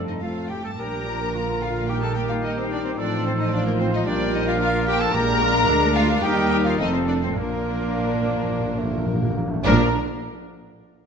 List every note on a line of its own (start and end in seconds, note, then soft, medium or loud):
0.00 0.58 F1 medium
0.00 0.23 G2 soft
0.00 0.21 F3 soft
0.00 0.20 A3 soft
0.00 0.20 C4 soft
0.00 0.21 C4 soft
0.00 0.21 A4 soft
0.00 0.46 A4 medium
0.08 0.14 D#4 soft
0.08 0.21 D#4 soft
0.08 0.22 D#5 medium
0.08 0.14 D#5 medium
0.21 0.49 A2 soft
0.21 0.50 F3 soft
0.21 0.57 A3 soft
0.21 0.57 C4 soft
0.21 0.50 C4 soft
0.21 0.52 F4 medium
0.21 0.50 F4 medium
0.21 0.50 A4 soft
0.21 0.49 F5 medium
0.21 0.28 F5 medium
0.49 0.55 A2 medium
0.49 0.64 G4 medium
0.49 0.63 G5 medium
0.49 0.64 G5 medium
0.64 0.78 G2 soft
0.64 0.71 A4 medium
0.64 0.79 A4 soft
0.64 0.70 A5 medium
0.64 0.79 A5 medium
0.78 2.94 A#1 medium
0.78 2.94 A#2 medium
0.78 1.85 F3 soft
0.78 1.04 G3 medium
0.78 1.84 D4 soft
0.78 1.30 D4 soft
0.78 1.36 G4 medium
0.78 1.59 A#4 medium
0.78 2.94 A#4 medium
0.78 1.60 A#4 medium
0.78 1.60 A#5 medium
0.78 1.61 A#5 medium
1.06 1.34 F3 medium
1.33 1.88 D3 medium
1.33 1.88 F4 soft
1.33 1.91 F4 soft
1.61 1.89 F4 medium
1.61 1.88 F4 medium
1.61 1.89 F5 medium
1.87 2.98 D#3 medium
1.87 2.98 G3 medium
1.87 4.06 D#4 medium
1.87 2.41 D#4 medium
1.87 2.03 G4 medium
1.87 2.05 G4 medium
1.87 3.00 G4 medium
1.87 2.02 G5 medium
2.01 2.15 A4 medium
2.01 2.18 A4 medium
2.01 2.16 A5 medium
2.15 2.30 G4 medium
2.15 2.34 G4 medium
2.15 2.21 G5 medium
2.15 2.30 G5 medium
2.29 2.35 F4 medium
2.29 2.47 F4 medium
2.29 2.35 F5 medium
2.29 2.44 F5 medium
2.42 2.96 D#4 medium
2.42 2.57 D#4 medium
2.42 2.56 D#5 medium
2.42 2.51 D#5 medium
2.57 2.70 C4 medium
2.57 2.64 C4 medium
2.57 2.71 C5 medium
2.70 2.84 D4 medium
2.70 2.78 D4 medium
2.70 2.84 D5 medium
2.70 2.78 D5 medium
2.84 2.89 C4 medium
2.84 2.90 C4 medium
2.84 2.91 C5 medium
2.84 2.92 C5 medium
2.96 4.04 A1 medium
2.96 4.04 A2 medium
2.96 3.50 F3 medium
2.96 5.14 F3 medium
2.96 3.51 C4 medium
2.96 3.24 D4 medium
2.96 3.25 D4 medium
2.96 3.52 A4 medium
2.96 4.04 C5 medium
2.96 3.25 D5 medium
3.24 3.38 C4 medium
3.24 3.31 C4 medium
3.24 3.32 C5 medium
3.38 3.44 D#4 medium
3.38 3.52 D#4 medium
3.38 3.52 D#5 medium
3.38 3.45 D#5 medium
3.50 4.05 F3 medium
3.50 3.65 D4 medium
3.50 3.66 D4 medium
3.50 4.60 F4 medium
3.50 4.06 F4 medium
3.50 3.66 D5 medium
3.50 3.59 D5 medium
3.66 3.79 A#3 medium
3.66 3.72 A#3 medium
3.66 3.79 A#4 medium
3.66 3.72 A#4 medium
3.79 3.95 C4 medium
3.79 3.93 C4 medium
3.79 3.93 C5 medium
3.79 3.86 C5 medium
3.92 4.06 D#4 medium
3.92 4.06 D#5 medium
3.92 3.99 D#5 medium
4.05 5.12 A#1 medium
4.05 5.11 A#2 medium
4.05 4.58 G3 medium
4.05 4.33 D4 medium
4.05 5.11 D4 medium
4.05 4.59 G4 medium
4.05 5.12 A#4 medium
4.05 4.34 D5 medium
4.05 4.34 D5 loud
4.33 4.46 D#4 medium
4.33 4.47 D#4 medium
4.33 4.47 D#5 medium
4.33 4.48 D#5 loud
4.47 4.59 F4 medium
4.47 4.54 F4 medium
4.47 4.60 F5 medium
4.47 4.54 F5 medium
4.59 5.14 F3 medium
4.59 5.12 D4 medium
4.59 5.15 F4 medium
4.59 4.68 F4 medium
4.59 4.87 F4 medium
4.59 4.67 F5 medium
4.59 4.87 F5 loud
4.87 5.00 G4 medium
4.87 5.02 G4 loud
4.87 5.00 G5 loud
4.87 5.01 G5 loud
5.00 5.14 A4 medium
5.00 5.13 A4 loud
5.00 5.14 A5 loud
5.00 5.15 A5 loud
5.12 5.64 A#1 medium
5.12 5.64 A#2 medium
5.12 5.91 A#2 medium
5.12 6.18 G#3 medium
5.12 6.19 G#3 medium
5.12 6.18 D4 medium
5.12 6.19 D4 medium
5.12 5.44 G4 medium
5.12 5.79 A#4 loud
5.12 6.19 A#4 medium
5.12 5.94 A#4 loud
5.12 5.95 A#5 loud
5.12 5.94 A#5 loud
5.42 5.71 F4 medium
5.67 6.23 D2 medium
5.67 6.25 D4 medium
5.95 6.08 F4 medium
5.95 6.23 F4 medium
5.95 6.23 F5 loud
6.21 6.77 D#2 medium
6.21 6.78 D#2 medium
6.21 6.78 G3 medium
6.21 6.77 G3 medium
6.21 6.78 D#4 medium
6.21 6.79 D#4 medium
6.21 7.07 D#4 medium
6.21 6.49 G4 medium
6.21 6.51 G4 loud
6.21 6.78 A#4 medium
6.21 6.28 G5 medium
6.21 6.50 G5 loud
6.50 6.64 G4 medium
6.50 6.69 G4 medium
6.50 6.56 G5 medium
6.50 6.56 G5 loud
6.65 6.79 F4 medium
6.65 6.81 F4 medium
6.65 6.71 F5 medium
6.65 6.79 F5 medium
6.77 7.35 F1 medium
6.77 7.35 F2 medium
6.77 7.34 F3 medium
6.77 7.34 A3 medium
6.77 7.35 C4 medium
6.77 6.92 D#4 medium
6.77 6.96 D#4 medium
6.77 7.35 A4 medium
6.77 6.92 D#5 medium
6.77 6.93 D#5 loud
6.92 6.99 C4 medium
6.92 7.08 C4 medium
6.92 7.07 C5 medium
6.92 6.99 C5 medium
7.06 7.21 D4 medium
7.06 7.15 D4 medium
7.06 7.12 D5 medium
7.06 7.14 D5 medium
7.20 7.38 C4 medium
7.20 7.28 C4 medium
7.20 7.34 C5 medium
7.20 7.28 C5 medium
7.34 9.44 A#1 medium
7.34 7.42 A#2 soft
7.34 9.44 A#2 medium
7.34 9.32 F3 medium
7.34 9.44 A#3 medium
7.34 9.37 A#3 medium
7.34 9.33 A#3 medium
7.34 9.44 D4 medium
7.34 9.33 D4 medium
7.34 9.33 F4 medium
7.34 9.36 A#4 medium
7.34 9.33 A#4 medium
7.34 9.37 A#4 medium
7.43 7.50 A#2 soft
7.51 7.57 A#2 soft
7.58 7.65 A#2 soft
7.66 7.73 A#2 soft
7.74 7.81 A#2 soft
7.82 7.89 A#2 soft
7.90 7.97 A#2 soft
7.90 8.80 D4 medium
7.98 8.04 A#2 soft
8.06 8.12 A#2 soft
8.13 8.20 A#2 soft
8.21 8.27 A#2 medium
8.28 8.34 A#2 medium
8.35 8.42 A#2 medium
8.43 8.50 A#2 medium
8.51 8.58 A#2 medium
8.59 8.65 A#2 medium
8.66 8.73 A#2 medium
8.74 8.82 A#2 medium
8.78 9.09 A3 medium
8.83 8.90 A#2 medium
8.91 8.97 A#2 medium
8.98 9.05 A#2 medium
9.06 9.13 A#2 medium
9.06 9.36 A#3 medium
9.14 9.21 A#2 medium
9.22 9.29 A#2 medium
9.30 9.37 A#2 medium
9.36 9.45 A#2 medium
9.36 9.52 A#3 medium
9.46 9.53 A#2 loud
9.50 9.61 A#2 loud
9.50 9.65 A3 medium
9.64 9.96 A#1 loud
9.64 9.91 A#2 loud
9.64 9.96 A#2 medium
9.64 9.89 F3 medium
9.64 9.96 A#3 medium
9.64 9.97 A#3 medium
9.64 9.96 D4 medium
9.64 9.88 D4 medium
9.64 9.89 D4 medium
9.64 9.89 A#4 medium
9.64 9.97 A#4 loud
9.64 9.89 A#4 medium
9.64 9.96 A#5 medium